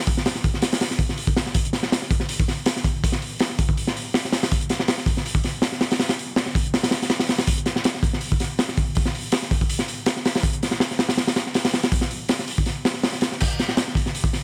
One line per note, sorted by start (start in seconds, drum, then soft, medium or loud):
0.07 kick loud
0.07 open hi-hat medium
0.17 snare medium
0.26 snare medium
0.26 open hi-hat medium
0.35 snare soft
0.44 kick medium
0.44 open hi-hat medium
0.54 snare soft
0.62 snare loud
0.62 open hi-hat medium
0.72 snare loud
0.72 open hi-hat medium
0.81 snare medium
0.81 open hi-hat medium
0.91 snare soft
0.99 kick medium
0.99 open hi-hat medium
1.09 snare soft
1.17 open hi-hat medium
1.27 kick medium
1.37 snare medium
1.37 open hi-hat medium
1.46 snare soft
1.54 kick loud
1.54 open hi-hat medium
1.65 closed hi-hat soft
1.73 snare medium
1.73 open hi-hat medium
1.83 snare medium
1.92 snare loud
1.92 open hi-hat medium
2.02 snare soft
2.11 kick loud
2.11 open hi-hat medium
2.20 snare soft
2.29 open hi-hat loud
2.40 kick loud
2.48 snare soft
2.48 open hi-hat medium
2.66 snare loud
2.66 open hi-hat medium
2.76 snare medium
2.84 kick loud
2.84 open hi-hat medium
3.04 kick loud
3.04 open hi-hat loud
3.12 snare medium
3.22 open hi-hat medium
3.39 snare loud
3.39 open hi-hat medium
3.50 snare soft
3.59 kick loud
3.59 open hi-hat medium
3.69 kick medium
3.77 open hi-hat medium
3.87 snare medium
3.97 open hi-hat medium
4.14 snare loud
4.14 open hi-hat medium
4.25 snare soft
4.32 snare loud
4.32 open hi-hat medium
4.43 snare loud
4.43 open hi-hat medium
4.51 kick loud
4.51 open hi-hat medium
4.61 closed hi-hat soft
4.69 snare medium
4.69 open hi-hat medium
4.80 snare medium
4.88 snare loud
4.88 open hi-hat medium
4.98 snare soft
5.06 kick loud
5.06 open hi-hat medium
5.17 snare soft
5.26 open hi-hat medium
5.35 kick medium
5.44 snare soft
5.44 open hi-hat medium
5.62 snare loud
5.62 open hi-hat medium
5.72 snare soft
5.81 snare loud
5.81 open hi-hat medium
5.91 snare loud
5.91 open hi-hat medium
6.00 snare loud
6.00 open hi-hat medium
6.09 snare loud
6.09 open hi-hat medium
6.19 open hi-hat medium
6.36 snare loud
6.36 open hi-hat medium
6.46 snare soft
6.55 kick loud
6.55 open hi-hat medium
6.66 closed hi-hat soft
6.74 snare loud
6.74 open hi-hat medium
6.83 snare loud
6.83 open hi-hat medium
6.91 snare loud
6.91 open hi-hat medium
7.02 snare medium
7.02 open hi-hat medium
7.10 snare loud
7.10 open hi-hat medium
7.20 snare loud
7.20 open hi-hat medium
7.29 snare loud
7.29 open hi-hat medium
7.38 snare loud
7.38 open hi-hat medium
7.47 kick loud
7.47 open hi-hat loud
7.58 closed hi-hat soft
7.66 snare medium
7.66 open hi-hat medium
7.76 snare medium
7.84 snare loud
7.84 open hi-hat medium
7.94 snare soft
8.03 kick loud
8.03 open hi-hat medium
8.13 snare soft
8.21 open hi-hat medium
8.32 kick medium
8.40 snare soft
8.40 open hi-hat medium
8.59 snare loud
8.59 open hi-hat medium
8.69 snare soft
8.77 kick medium
8.77 open hi-hat medium
8.95 kick loud
8.95 open hi-hat medium
9.06 snare medium
9.15 open hi-hat medium
9.32 snare loud
9.32 open hi-hat loud
9.42 snare soft
9.51 kick loud
9.51 open hi-hat medium
9.61 kick medium
9.69 open hi-hat medium
9.79 snare medium
9.88 open hi-hat medium
10.06 snare loud
10.06 open hi-hat medium
10.16 snare soft
10.25 snare loud
10.25 open hi-hat medium
10.35 snare loud
10.35 open hi-hat medium
10.43 kick loud
10.43 open hi-hat medium
10.53 closed hi-hat soft
10.63 snare medium
10.63 open hi-hat medium
10.71 snare medium
10.80 snare loud
10.80 open hi-hat medium
10.91 snare soft
10.99 snare loud
10.99 open hi-hat medium
11.09 snare loud
11.09 open hi-hat medium
11.17 snare loud
11.17 open hi-hat medium
11.27 snare loud
11.27 open hi-hat medium
11.36 snare loud
11.36 open hi-hat medium
11.47 snare soft
11.54 snare loud
11.54 open hi-hat medium
11.65 snare loud
11.65 open hi-hat medium
11.74 snare loud
11.74 open hi-hat medium
11.83 snare loud
11.83 open hi-hat medium
11.92 kick loud
11.92 open hi-hat medium
12.01 snare medium
12.11 open hi-hat medium
12.29 snare loud
12.29 open hi-hat medium
12.39 snare soft
12.48 open hi-hat medium
12.58 kick medium
12.66 snare soft
12.66 open hi-hat medium
12.85 snare loud
12.85 open hi-hat medium
12.94 snare soft
13.03 snare loud
13.03 open hi-hat medium
13.13 snare soft
13.21 snare loud
13.21 open hi-hat medium
13.32 snare soft
13.40 kick loud
13.40 open hi-hat medium
13.40 crash medium
13.50 closed hi-hat soft
13.59 snare medium
13.59 open hi-hat medium
13.68 snare medium
13.77 snare loud
13.77 open hi-hat medium
13.88 snare soft
13.95 kick medium
13.95 open hi-hat medium
14.06 snare soft
14.15 open hi-hat medium
14.24 kick medium
14.33 snare soft
14.33 open hi-hat medium